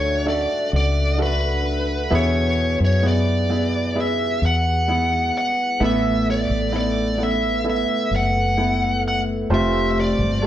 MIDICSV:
0, 0, Header, 1, 5, 480
1, 0, Start_track
1, 0, Key_signature, 3, "major"
1, 0, Tempo, 923077
1, 1096, Time_signature, 4, 2, 24, 8
1, 5443, End_track
2, 0, Start_track
2, 0, Title_t, "Lead electric guitar"
2, 0, Program_c, 0, 29
2, 0, Note_on_c, 0, 73, 76
2, 130, Note_off_c, 0, 73, 0
2, 147, Note_on_c, 0, 74, 81
2, 365, Note_off_c, 0, 74, 0
2, 396, Note_on_c, 0, 74, 86
2, 610, Note_off_c, 0, 74, 0
2, 636, Note_on_c, 0, 71, 75
2, 1115, Note_off_c, 0, 71, 0
2, 1117, Note_on_c, 0, 73, 91
2, 1445, Note_off_c, 0, 73, 0
2, 1480, Note_on_c, 0, 73, 77
2, 1591, Note_off_c, 0, 73, 0
2, 1599, Note_on_c, 0, 74, 81
2, 2081, Note_off_c, 0, 74, 0
2, 2082, Note_on_c, 0, 76, 84
2, 2316, Note_off_c, 0, 76, 0
2, 2318, Note_on_c, 0, 78, 102
2, 2792, Note_off_c, 0, 78, 0
2, 2798, Note_on_c, 0, 78, 83
2, 3034, Note_off_c, 0, 78, 0
2, 3038, Note_on_c, 0, 76, 92
2, 3251, Note_off_c, 0, 76, 0
2, 3279, Note_on_c, 0, 74, 74
2, 3512, Note_off_c, 0, 74, 0
2, 3519, Note_on_c, 0, 74, 76
2, 3754, Note_off_c, 0, 74, 0
2, 3760, Note_on_c, 0, 76, 79
2, 3972, Note_off_c, 0, 76, 0
2, 4002, Note_on_c, 0, 76, 88
2, 4236, Note_off_c, 0, 76, 0
2, 4243, Note_on_c, 0, 78, 103
2, 4688, Note_off_c, 0, 78, 0
2, 4721, Note_on_c, 0, 78, 88
2, 4782, Note_off_c, 0, 78, 0
2, 4961, Note_on_c, 0, 76, 95
2, 5145, Note_off_c, 0, 76, 0
2, 5152, Note_on_c, 0, 76, 61
2, 5182, Note_off_c, 0, 76, 0
2, 5202, Note_on_c, 0, 74, 77
2, 5436, Note_off_c, 0, 74, 0
2, 5443, End_track
3, 0, Start_track
3, 0, Title_t, "Glass harmonica"
3, 0, Program_c, 1, 92
3, 0, Note_on_c, 1, 62, 62
3, 0, Note_on_c, 1, 69, 55
3, 0, Note_on_c, 1, 76, 69
3, 0, Note_on_c, 1, 78, 70
3, 1073, Note_off_c, 1, 69, 0
3, 1075, Note_off_c, 1, 76, 0
3, 1079, Note_off_c, 1, 78, 0
3, 1081, Note_off_c, 1, 62, 0
3, 1095, Note_on_c, 1, 71, 69
3, 1097, Note_on_c, 1, 64, 66
3, 1100, Note_on_c, 1, 68, 58
3, 2997, Note_off_c, 1, 64, 0
3, 2999, Note_off_c, 1, 68, 0
3, 3016, Note_on_c, 1, 69, 57
3, 3018, Note_on_c, 1, 76, 63
3, 3020, Note_on_c, 1, 57, 64
3, 4914, Note_off_c, 1, 71, 0
3, 4917, Note_off_c, 1, 69, 0
3, 4918, Note_off_c, 1, 76, 0
3, 4919, Note_off_c, 1, 57, 0
3, 4940, Note_on_c, 1, 65, 59
3, 4942, Note_on_c, 1, 57, 66
3, 4942, Note_on_c, 1, 67, 74
3, 5443, Note_off_c, 1, 57, 0
3, 5443, Note_off_c, 1, 65, 0
3, 5443, Note_off_c, 1, 67, 0
3, 5443, End_track
4, 0, Start_track
4, 0, Title_t, "Grand piano"
4, 0, Program_c, 2, 0
4, 0, Control_c, 2, 64, 127
4, 0, Note_on_c, 2, 45, 62
4, 0, Note_on_c, 2, 62, 63
4, 0, Note_on_c, 2, 66, 57
4, 0, Note_on_c, 2, 69, 60
4, 0, Note_on_c, 2, 74, 73
4, 0, Note_on_c, 2, 76, 72
4, 122, Note_off_c, 2, 62, 0
4, 123, Note_off_c, 2, 66, 0
4, 125, Note_off_c, 2, 69, 0
4, 125, Note_off_c, 2, 76, 0
4, 133, Note_on_c, 2, 62, 72
4, 135, Note_on_c, 2, 66, 62
4, 137, Note_on_c, 2, 69, 65
4, 139, Note_on_c, 2, 76, 75
4, 590, Note_off_c, 2, 62, 0
4, 592, Note_off_c, 2, 66, 0
4, 592, Note_off_c, 2, 69, 0
4, 593, Note_off_c, 2, 76, 0
4, 614, Note_on_c, 2, 62, 67
4, 618, Note_on_c, 2, 66, 66
4, 619, Note_on_c, 2, 69, 60
4, 620, Note_on_c, 2, 76, 74
4, 1071, Note_off_c, 2, 62, 0
4, 1073, Note_off_c, 2, 66, 0
4, 1074, Note_off_c, 2, 69, 0
4, 1074, Note_off_c, 2, 76, 0
4, 1095, Note_on_c, 2, 59, 87
4, 1095, Note_on_c, 2, 64, 84
4, 1098, Note_on_c, 2, 47, 55
4, 1098, Note_on_c, 2, 68, 79
4, 1098, Note_on_c, 2, 76, 96
4, 1102, Note_off_c, 2, 74, 0
4, 1102, Control_c, 2, 64, 0
4, 1107, Note_off_c, 2, 45, 0
4, 1207, Control_c, 2, 64, 127
4, 1551, Note_off_c, 2, 59, 0
4, 1551, Note_off_c, 2, 64, 0
4, 1553, Note_off_c, 2, 68, 0
4, 1553, Note_off_c, 2, 76, 0
4, 1573, Note_on_c, 2, 59, 66
4, 1573, Note_on_c, 2, 64, 59
4, 1574, Note_on_c, 2, 68, 60
4, 1577, Note_on_c, 2, 78, 74
4, 1796, Note_off_c, 2, 47, 0
4, 1802, Note_off_c, 2, 59, 0
4, 1802, Note_off_c, 2, 64, 0
4, 1803, Note_off_c, 2, 68, 0
4, 1805, Note_off_c, 2, 78, 0
4, 1817, Note_on_c, 2, 59, 59
4, 1818, Note_on_c, 2, 64, 59
4, 1820, Note_on_c, 2, 68, 53
4, 1821, Note_on_c, 2, 76, 67
4, 2044, Note_off_c, 2, 59, 0
4, 2045, Note_off_c, 2, 64, 0
4, 2046, Note_off_c, 2, 68, 0
4, 2046, Note_off_c, 2, 76, 0
4, 2055, Note_on_c, 2, 59, 63
4, 2057, Note_on_c, 2, 64, 52
4, 2059, Note_on_c, 2, 68, 57
4, 2059, Note_on_c, 2, 76, 71
4, 2511, Note_off_c, 2, 59, 0
4, 2513, Note_off_c, 2, 64, 0
4, 2513, Note_off_c, 2, 68, 0
4, 2513, Note_off_c, 2, 76, 0
4, 2537, Note_on_c, 2, 59, 67
4, 2539, Note_on_c, 2, 68, 55
4, 2540, Note_on_c, 2, 64, 58
4, 2542, Note_on_c, 2, 76, 70
4, 2992, Note_off_c, 2, 59, 0
4, 2994, Note_off_c, 2, 64, 0
4, 2994, Note_off_c, 2, 68, 0
4, 2995, Note_off_c, 2, 76, 0
4, 3016, Note_on_c, 2, 59, 89
4, 3018, Note_on_c, 2, 64, 78
4, 3020, Note_on_c, 2, 45, 59
4, 3020, Note_on_c, 2, 52, 55
4, 3021, Note_on_c, 2, 69, 80
4, 3021, Note_on_c, 2, 76, 101
4, 3022, Control_c, 2, 64, 0
4, 3105, Control_c, 2, 64, 127
4, 3472, Note_off_c, 2, 59, 0
4, 3473, Note_off_c, 2, 64, 0
4, 3474, Note_off_c, 2, 69, 0
4, 3474, Note_off_c, 2, 76, 0
4, 3496, Note_on_c, 2, 59, 63
4, 3496, Note_on_c, 2, 64, 62
4, 3499, Note_on_c, 2, 69, 56
4, 3499, Note_on_c, 2, 76, 70
4, 3717, Note_off_c, 2, 45, 0
4, 3717, Note_off_c, 2, 52, 0
4, 3724, Note_off_c, 2, 59, 0
4, 3724, Note_off_c, 2, 64, 0
4, 3725, Note_off_c, 2, 76, 0
4, 3726, Note_off_c, 2, 69, 0
4, 3733, Note_on_c, 2, 59, 63
4, 3735, Note_on_c, 2, 64, 55
4, 3737, Note_on_c, 2, 69, 51
4, 3738, Note_on_c, 2, 78, 66
4, 3962, Note_off_c, 2, 59, 0
4, 3963, Note_off_c, 2, 64, 0
4, 3964, Note_off_c, 2, 69, 0
4, 3965, Note_off_c, 2, 78, 0
4, 3973, Note_on_c, 2, 59, 59
4, 3975, Note_on_c, 2, 69, 56
4, 3976, Note_on_c, 2, 64, 59
4, 3977, Note_on_c, 2, 76, 65
4, 4430, Note_off_c, 2, 59, 0
4, 4431, Note_off_c, 2, 69, 0
4, 4432, Note_off_c, 2, 64, 0
4, 4432, Note_off_c, 2, 76, 0
4, 4459, Note_on_c, 2, 59, 59
4, 4459, Note_on_c, 2, 64, 59
4, 4459, Note_on_c, 2, 69, 60
4, 4462, Note_on_c, 2, 78, 71
4, 4913, Note_off_c, 2, 64, 0
4, 4914, Note_off_c, 2, 59, 0
4, 4914, Note_off_c, 2, 69, 0
4, 4915, Note_off_c, 2, 78, 0
4, 4940, Note_on_c, 2, 65, 79
4, 4941, Note_on_c, 2, 57, 84
4, 4942, Control_c, 2, 64, 0
4, 4942, Note_on_c, 2, 48, 59
4, 4942, Note_on_c, 2, 72, 93
4, 4943, Note_on_c, 2, 67, 76
4, 5020, Control_c, 2, 64, 127
4, 5394, Note_off_c, 2, 57, 0
4, 5394, Note_off_c, 2, 65, 0
4, 5395, Note_off_c, 2, 67, 0
4, 5395, Note_off_c, 2, 72, 0
4, 5418, Note_on_c, 2, 57, 66
4, 5419, Note_on_c, 2, 65, 62
4, 5421, Note_on_c, 2, 67, 58
4, 5423, Note_on_c, 2, 69, 76
4, 5443, Note_off_c, 2, 48, 0
4, 5443, Note_off_c, 2, 57, 0
4, 5443, Note_off_c, 2, 65, 0
4, 5443, Note_off_c, 2, 67, 0
4, 5443, Note_off_c, 2, 69, 0
4, 5443, End_track
5, 0, Start_track
5, 0, Title_t, "Fretless electric bass"
5, 0, Program_c, 3, 35
5, 0, Note_on_c, 3, 38, 78
5, 236, Note_off_c, 3, 38, 0
5, 379, Note_on_c, 3, 37, 78
5, 1077, Note_off_c, 3, 37, 0
5, 1101, Note_on_c, 3, 40, 83
5, 1437, Note_off_c, 3, 40, 0
5, 1458, Note_on_c, 3, 42, 77
5, 2276, Note_off_c, 3, 42, 0
5, 2298, Note_on_c, 3, 40, 81
5, 2756, Note_off_c, 3, 40, 0
5, 3018, Note_on_c, 3, 33, 88
5, 3356, Note_off_c, 3, 33, 0
5, 3379, Note_on_c, 3, 33, 81
5, 4077, Note_off_c, 3, 33, 0
5, 4218, Note_on_c, 3, 30, 77
5, 4916, Note_off_c, 3, 30, 0
5, 4938, Note_on_c, 3, 29, 83
5, 5276, Note_off_c, 3, 29, 0
5, 5297, Note_on_c, 3, 31, 86
5, 5443, Note_off_c, 3, 31, 0
5, 5443, End_track
0, 0, End_of_file